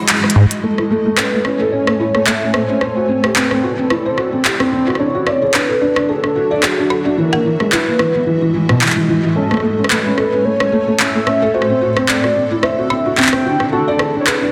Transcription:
Already playing: G#3 E4 F#4 D#5
0.09 clap, closed hi-hat
0.24 cross-stick
0.30 closed hi-hat
0.36 G#2
0.51 closed hi-hat
0.63 A3 A4 C#5 G#5
0.78 E4, cross-stick
0.90 A3
1.06 A3
1.17 C#4 B4, cross-stick, clap
1.33 A3
1.45 C#4, cross-stick
1.60 A4
1.72 C#4 C#5
1.87 A3, cross-stick
1.99 E4
2.15 A3, cross-stick
2.26 A3 E5, clap
2.42 C#4
2.54 A3 C5, cross-stick
2.69 C#4
2.81 C4 E4 C5 D5, cross-stick
2.96 F#4
3.08 C4
3.24 G4, cross-stick
3.36 C4 B4, clap
3.51 C4, cross-stick
3.63 F#4
3.78 C4
3.90 E4, cross-stick
4.06 C5
4.18 F#4, cross-stick
4.33 C4
4.45 G4, clap
4.60 C4, cross-stick
4.72 C4
4.87 F#4, cross-stick
4.90 cross-stick
4.95 D4, cross-stick
4.99 D4 F#4 C#5 E5
5.15 F#4
5.27 D5, cross-stick
5.42 G#4
5.54 D4 B4, cross-stick, clap
5.69 A4
5.81 D4
5.96 D4, cross-stick
6.08 G#4 A4
6.24 D4, cross-stick
6.36 F#4
6.51 D5
6.63 F#4 G#4, cross-stick, clap
6.78 D4
6.90 A4, cross-stick
7.05 D4
7.17 E3 G#3 A#4 D#5
7.33 A#3, cross-stick
7.45 E3
7.60 G#3, cross-stick
7.72 E4 B4, clap
7.87 A#3
7.99 E3, cross-stick
8.15 B3
8.27 E3
8.42 E3
8.54 E3
8.69 B2, cross-stick
8.81 E3, clap
8.86 clap
8.90 clap
8.96 E3
9.08 E3
9.24 E3
9.36 A3 C#4 A4 C#5 G#5
9.51 A3, cross-stick
9.54 cross-stick
9.57 cross-stick
9.60 A3, cross-stick
9.78 C#4
9.84 cross-stick
9.90 A3 B4, clap
10.06 C#4
10.18 A4, cross-stick
10.33 C#4
10.45 A3 C#5
10.60 C#4, cross-stick
10.72 A3
10.87 A3
10.99 C#4 E5, clap
11.15 A3
11.27 C#4, cross-stick
11.42 A4
11.54 C4 D4 E4 F#4 C5
11.62 cross-stick
11.69 C4
11.81 F#4
11.97 C4, cross-stick
12.08 C4 D5, clap
12.24 F#4, cross-stick
12.36 C4
12.51 E4
12.63 C5 E5, cross-stick
12.78 F#4
12.90 C4, cross-stick
13.06 F#4
13.17 C4 G5, clap
13.22 clap
13.27 clap
13.33 C4, cross-stick
13.45 F#4
13.60 C4, cross-stick
13.72 C#4 F#4 A4
13.88 D5
13.99 G#4, cross-stick
14.15 D4
14.20 C#5
14.27 G#4 B4, cross-stick, clap
14.42 D4

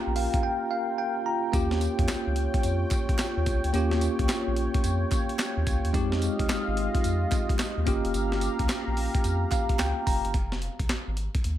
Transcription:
Already playing: A#3 C#4 F4 G4 A#4 G5
0.07 A#1
0.16 F5, open hi-hat
0.34 kick, closed hi-hat
0.43 G5
0.71 F5
0.98 G5
1.26 A#5
1.52 D#2 A#3 C#4 F4 G4 C#5, kick, closed hi-hat, tambourine
1.71 snare
1.81 closed hi-hat, tambourine
1.99 F2, kick, closed hi-hat
2.08 C#2, snare, clap, closed hi-hat, tambourine
2.27 C#2
2.36 closed hi-hat
2.54 kick, closed hi-hat
2.63 F2, closed hi-hat, tambourine
2.91 kick, clap, closed hi-hat, tambourine
3.09 kick, closed hi-hat
3.19 snare, clap, closed hi-hat, tambourine
3.37 D#2
3.46 C2, kick, closed hi-hat, tambourine
3.64 C#2, closed hi-hat
3.73 D#2 A#3 C#4 F4 G4, closed hi-hat, tambourine
3.91 snare
4.01 closed hi-hat, tambourine
4.19 C#2, kick, closed hi-hat
4.29 A#1, snare, clap, closed hi-hat, tambourine
4.47 A#1
4.56 closed hi-hat
4.74 kick, closed hi-hat
4.84 F2, closed hi-hat, tambourine
5.11 kick, clap, closed hi-hat, tambourine
5.29 closed hi-hat
5.39 snare, clap, closed hi-hat, tambourine
5.57 D#2
5.67 C#2, kick, closed hi-hat, tambourine
5.85 D#2, closed hi-hat
5.93 F2 G#3 C4 D#4 F4 G4 D#5 F5, kick, closed hi-hat, tambourine
6.12 snare
6.22 closed hi-hat, tambourine
6.39 C2, kick, closed hi-hat
6.49 G#1, snare, clap, closed hi-hat, tambourine
6.68 G#1
6.77 closed hi-hat
6.95 kick, closed hi-hat
7.04 F2, closed hi-hat, tambourine
7.32 kick, clap, closed hi-hat, tambourine
7.49 kick, closed hi-hat
7.59 snare, clap, closed hi-hat, tambourine
7.77 D#2
7.85 G1 A#3 C#4 F4 G4 F5 A#5, kick, closed hi-hat, tambourine
8.05 F1, closed hi-hat
8.14 G1, closed hi-hat, tambourine
8.32 snare
8.41 closed hi-hat, tambourine
8.59 C#2, kick, closed hi-hat
8.69 A#1, snare, clap, closed hi-hat, tambourine
8.87 A#1
8.97 open hi-hat
9.15 kick, closed hi-hat
9.24 F2, closed hi-hat, tambourine
9.51 F5, kick, clap, closed hi-hat, tambourine
9.69 kick, closed hi-hat
9.79 C#2 G5, snare, clap, closed hi-hat, tambourine
10.07 F1 A#5, kick, open hi-hat, tambourine
10.25 G1, closed hi-hat
10.34 F1, kick, closed hi-hat
10.52 snare
10.62 closed hi-hat
10.79 C2, kick, closed hi-hat
10.89 G#1, snare, clap, closed hi-hat
11.08 G#1
11.17 closed hi-hat
11.35 kick, closed hi-hat
11.44 D#2, closed hi-hat

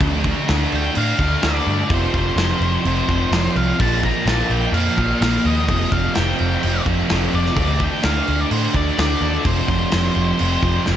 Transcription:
0.00 D2 D3 A3 D4, kick, crash
0.24 kick, crash
0.47 D2 D3 A3 D4, snare, crash
0.72 D2 G5, crash
0.95 A2 D3 A3 D4 F5, crash
1.19 D2 A3 D4, kick, crash
1.42 D2 D3 A3 D4, snare, crash
1.46 D5
1.66 G2, crash
1.71 D5
1.89 F1 F2 C3 F3, kick, crash
1.94 C5
2.14 F1, kick, crash
2.36 F1 F2 C3 F3, snare, crash
2.61 F1, crash
2.84 F1 F2 C3 F3, crash
3.08 F1 C3 F3, kick, crash
3.32 F1 F2 C3 F3, snare, crash
3.56 C2 F5, crash
3.79 A#1 A#2 F3 A#3 A5, kick, crash
4.03 A#5, kick, crash
4.26 A#1 A#2 F3 A#3 A5, snare, crash
4.50 A#1 G5, crash
4.72 F2 A#2 F3 A#3 F5, crash
4.97 A#1 F3 A#3, kick, crash
5.21 A#1 A#2 F3 A#3 F5, snare, crash
5.45 D#2 D#5, crash
5.68 F1 F2 C3 F3, kick, crash
5.92 F1 F5, kick, crash
6.15 F1 F2 C3 F3 G5, snare, crash
6.39 F1, crash
6.63 F1 F2 C3 F3, crash
6.85 F1 C3 F3, kick, crash
7.09 F1 F2 C3 F3, snare, crash
7.33 F1 D5, crash
7.46 snare
7.56 D2 D3 A3 D4, kick, crash
7.80 G5, kick, crash
8.03 D2 D3 A3 D4 F5, snare, crash
8.28 D2, crash
8.41 D5
8.50 A2 D3 A3 D4 C5, crash
8.74 D2 A3 D4 D5, kick, crash
8.97 D2 D3 A3 D4 D5, snare, crash
9.21 D#2 D5, crash
9.45 F1 F2 C3 F3 C5, kick, crash
9.68 F1, kick, crash
9.92 F1 F2 C3 F3, snare, crash
10.15 F1, crash
10.39 F1 F2 C3 F3, crash
10.62 F1 C3 F3, kick, crash
10.86 F1 F2 C3 F3, snare

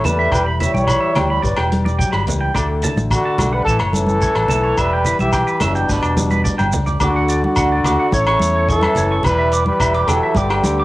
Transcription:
Already playing: A2 C#4
0.04 E2 G3 A3 B4 A5, closed hi-hat, low conga, shekere
0.19 E5
0.31 E1 E3 G3 G4 B4 G5, muted nylon-string guitar stroke, kick, cross-stick, low agogo, shekere
0.46 B5
0.60 G3 E4 C#5 E5, closed hi-hat, low conga, shekere
0.74 B1 G5, high conga, shekere
0.87 B5, kick, cross-stick, low agogo, shekere
1.01 E5
1.15 D2 G3 G5, cross-stick, closed hi-hat, low conga, low agogo
1.30 B5
1.42 G1 G3 D4 G4 B4 D5, kick, shekere
1.57 E1 G5, cross-stick, low agogo
1.72 G4, closed hi-hat, high conga
1.85 D5, high conga, shekere
1.99 F#3 G5, kick, shekere
2.12 G1 B5, cross-stick, low agogo
2.27 C#2 E3, closed hi-hat, low conga, shekere
2.41 G5
2.54 D2 D3 A3 D4 F#4 A4 D5, kick, cross-stick, low agogo, shekere
2.82 D4 A5, closed hi-hat, low conga, shekere
2.96 A1, high conga, shekere
3.11 F#4, kick, cross-stick, low agogo, shekere
3.15 D3
3.25 A5
3.38 B1 A3, cross-stick, closed hi-hat, high conga, low conga, low agogo, shekere
3.53 G3 B4 F#5
3.65 A1 A2 A4 A5, kick, shekere
3.70 E3
3.79 F#1 C#5, cross-stick, low agogo
3.93 C#4 A4, closed hi-hat, high conga, shekere
3.98 E3
4.06 high conga, shekere
4.21 C#5, kick, shekere
4.35 A1, cross-stick, low agogo
4.48 B1 A3 A5, closed hi-hat, low conga, shekere
4.63 C#5
4.77 E1 E3 G3 B4 E5, kick, cross-stick, low agogo, shekere
4.93 G5
5.05 E4 B4, closed hi-hat, low conga, shekere
5.19 B1 E3 G4 E5, high conga, shekere
5.33 G5, kick, cross-stick, low agogo, shekere
5.47 B4, shekere
5.60 F#1 B2 G3 D4 E5, cross-stick, closed hi-hat, high conga, low conga, low agogo, shekere
5.75 G5, shekere
5.89 G1 G3 B4, kick, snare, shekere
6.03 E1 D5, low agogo, shekere
6.17 G4, high tom, high conga, low conga, shekere
6.30 B4, high conga, shekere
6.44 D5, kick, mid tom, shekere
6.58 G1 G5, mid tom, high conga, low agogo, shekere
6.72 C#2 D4, floor tom, low conga, shekere
6.86 D5, floor tom, shekere
7.00 D2 D3 D4 F#4 A4 D6, kick, cross-stick, low conga, low agogo, shekere
7.04 D3
7.16 F#5
7.29 D5, closed hi-hat, shekere
7.44 D3 F#4, high conga
7.56 D2 D4 F#5, kick, cross-stick, low agogo, shekere
7.72 D5
7.84 D2 A3 D6, cross-stick, closed hi-hat, low conga, low agogo, shekere
8.00 F#5
8.11 A1 A2 A3 C#4 E4 C#5, kick, high conga, shekere
8.27 C#6, cross-stick, low agogo
8.40 E2, closed hi-hat, high conga, shekere
8.56 C#5
8.69 E3 E4 A4 C#6, kick, shekere
8.81 E5, cross-stick, high conga, low agogo
8.95 F#1 A3 C#5, closed hi-hat, low conga, shekere
9.12 C#6
9.23 E1 E3 G4 B4, kick, cross-stick, low conga, low agogo, shekere
9.29 G3
9.38 E5
9.52 D6, closed hi-hat, shekere
9.66 G3 B4, high conga
9.80 E1 E4 E5, kick, cross-stick, low agogo, shekere
9.94 G4 D6
10.08 E1 F#3 A4 G5, muted nylon-string guitar stroke, cross-stick, closed hi-hat, low conga, low agogo, shekere
10.23 E5
10.35 G1 G3 D4 G4 D6, kick, high conga, shekere
10.39 D3
10.50 G5, cross-stick, low agogo
10.64 D2 G5, closed hi-hat, high conga, shekere
10.80 D6

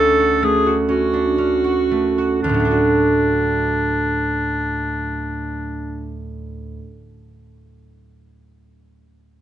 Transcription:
Already playing: D2 A3 C#4 F#4 A4
0.20 F#4
0.43 A3 G#4
0.66 F#4
0.89 C#4 F#4
1.13 D4
1.38 C#4
1.64 F#4
1.91 A3
2.18 F#4
2.42 D2 D4
2.49 A2
2.54 F#3
2.60 A3
2.65 D4
2.71 F#4

